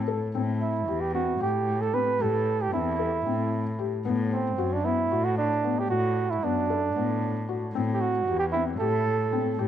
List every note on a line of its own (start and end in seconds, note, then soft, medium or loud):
0.00 0.22 A2 medium
0.08 0.27 A4 medium
0.35 0.79 A2 medium
0.35 0.72 C4 medium
0.61 1.02 E4 medium
0.88 1.32 E2 medium
0.88 1.07 G4 medium
1.00 1.14 G4 medium
1.14 1.33 C4 medium
1.14 1.39 F#4 medium
1.40 2.06 A2 medium
1.40 1.78 G4 medium
1.40 1.83 G4 medium
1.81 1.96 A4 medium
1.94 2.12 C4 medium
1.94 2.23 B4 medium
2.20 2.64 A2 medium
2.20 2.57 G4 medium
2.20 2.63 A4 medium
2.62 2.73 G4 medium
2.72 3.16 E2 medium
2.72 2.91 C4 medium
2.72 3.75 E4 medium
2.99 3.18 A4 medium
3.26 3.91 A2 medium
3.26 3.63 C4 medium
3.79 3.97 G4 medium
4.05 4.49 A2 medium
4.05 4.42 B3 medium
4.32 4.75 C4 medium
4.58 5.01 F#2 medium
4.58 4.76 F#4 medium
4.73 4.86 D4 medium
4.84 5.03 B3 medium
4.84 5.26 E4 medium
5.11 5.76 A2 medium
5.11 5.48 F#4 medium
5.24 5.38 F#4 medium
5.38 5.81 D4 medium
5.64 5.82 B3 medium
5.79 5.89 G4 medium
5.90 6.33 A2 medium
5.90 6.32 F#4 medium
5.90 6.27 F#4 medium
6.30 6.46 E4 medium
6.42 6.86 F#2 medium
6.42 6.61 B3 medium
6.42 7.49 D4 medium
6.70 6.88 A4 medium
6.95 7.60 A2 medium
6.95 7.32 B3 medium
7.49 7.67 F#4 medium
7.74 8.18 A2 medium
7.74 8.12 C4 medium
7.94 8.02 G4 medium
8.01 8.39 F#4 medium
8.27 8.70 E2 medium
8.27 8.46 G4 medium
8.39 8.45 G4 medium
8.52 8.72 C4 medium
8.52 8.64 E4 medium
8.79 9.45 A2 medium
8.79 9.16 G4 medium
8.79 9.55 A4 medium
9.33 9.51 C4 medium
9.59 9.68 A2 medium
9.59 9.68 G4 medium